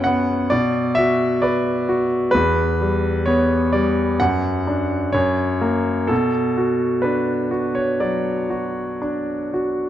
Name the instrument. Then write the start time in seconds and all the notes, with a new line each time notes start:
grand piano
Already playing: F#2 B3 C#4 F#5 G5
0.04 B3 F#5
0.50 B2 D5
0.95 F#4 E5
1.42 B4 D5
1.89 F#4
2.31 E2 B4
2.81 G3
3.26 B3 C#5
3.73 G3 D5
4.20 F#2 F#5
4.67 D4
5.12 F#2 C#5
5.61 A#3
6.07 B2 A4
6.57 F#4
7.02 D4 B4
7.51 F#4
7.75 C#5
8.00 F#3 D5
8.50 F#4
9.02 D4
9.54 F#4